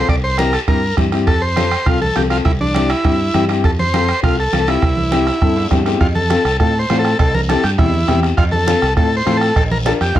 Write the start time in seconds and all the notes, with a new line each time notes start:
0.09 C2 D5, bombo low, bombo rim, high conga, high timbale, long guiro
0.24 C5
0.38 C4 E4 G4 A#4, bombo rim, high conga, high timbale, short guiro
0.53 A4, bombo rim, high timbale, short guiro
0.68 G2 C4 E4 G4 A#4, bombo low, bombo rim, high conga, high timbale
0.97 G2 C4 E4 G4, bombo low, bombo rim, high conga, high timbale, short guiro
1.12 C4 E4 G4, bombo rim, high timbale, short guiro
1.27 F2 A4, bombo low, bombo rim, high conga, high timbale, long guiro
1.42 C5
1.56 C4 F4 A4, bombo rim, high conga, high timbale, short guiro
1.71 bombo rim, high timbale, short guiro
1.86 C2 C4 F4 A4, bombo low, bombo rim, high conga, high timbale, long guiro
2.02 A4, high conga
2.15 C2 C4 F4 G4 A4, bombo rim, high conga, high timbale, short guiro
2.30 C4 F4 A4, bombo rim, high timbale, short guiro
2.45 C2 E4, bombo low, bombo rim, high conga, high timbale, long guiro
2.61 D4, high conga
2.75 C4 E4 G4, bombo rim, high conga, high timbale, short guiro
2.90 E4, bombo rim, high timbale, short guiro
3.04 G2 C4 E4 G4, bombo low, bombo rim, high conga, high timbale, long guiro
3.34 G2 C4 E4 G4, bombo rim, high conga, high timbale, short guiro
3.48 C4 E4 G4, bombo rim, high timbale, short guiro
3.64 F2 A4, bombo low, bombo rim, high conga, high timbale
3.79 C5, high conga
3.93 C4 F4 A4, bombo rim, high conga, high timbale, short guiro
4.08 bombo rim, high timbale, short guiro
4.23 C2 C4 F4 A4, bombo low, bombo rim, high conga, high timbale, long guiro
4.40 A4
4.53 C2 C4 F4 A4, bombo rim, high conga, high timbale, short guiro
4.67 C4 E4 F4 G4, bombo rim, high timbale, short guiro
4.82 C2, bombo low, bombo rim, high conga, high timbale, long guiro
4.97 high conga
5.12 C4 E4 G4, bombo rim, high conga, high timbale, short guiro
5.27 bombo rim, high timbale, short guiro
5.41 G2 C4 E4 A4, bombo low, bombo rim, high conga, long guiro
5.57 low timbale
5.71 G2 C4 E4 G4, bombo low, bombo rim, high conga, low timbale, short guiro
5.85 C4 E4 G4, bombo rim, low timbale, short guiro
6.01 F2 F4, bombo low, bombo rim, cowbell, high conga
6.15 A4, high conga
6.30 C4 F4 A4, bombo rim, cowbell, high conga, short guiro
6.45 C2, bombo rim, short guiro
6.60 A2 C4 F4 A4, bombo low, bombo rim, cowbell, high conga
6.79 C5
6.90 A2 C4 F4 C5, bombo rim, cowbell, high conga, low timbale, short guiro
6.99 A4
7.04 bombo rim, short guiro
7.19 C2 A4, bombo low, bombo rim, cowbell, high conga
7.34 A#4, high conga
7.49 C4 E4 G4 A4, bombo rim, cowbell, high conga, short guiro
7.64 G2 G4, bombo rim, short guiro
7.78 E2 C4 E4 G4, bombo low, bombo rim, cowbell, high conga, low conga, long guiro
7.94 high conga
8.07 E2 C4 E4 G4, bombo rim, cowbell, high conga, low conga, short guiro
8.23 bombo rim, short guiro
8.37 F2 F4, bombo low, bombo rim, cowbell, high conga
8.52 A4, high conga
8.67 C4 F4 A4, bombo rim, cowbell, high conga, short guiro
8.82 C2, bombo rim, short guiro
8.97 A2 C4 F4 A4, bombo low, bombo rim, cowbell, high conga, long guiro
9.17 C5
9.26 A2 C4 F4 A4, bombo rim, cowbell, high conga, short guiro
9.37 A4
9.41 bombo rim, short guiro
9.56 A#1 A4, bombo low, bombo rim, cowbell, high conga
9.71 A#4, high conga
9.85 D4 F4 A4 A#4, bombo rim, cowbell, high conga, short guiro
10.01 F2 G4, bombo rim, short guiro
10.15 D2 D4 F4 A#4, bombo low, bombo rim, cowbell, high conga, low conga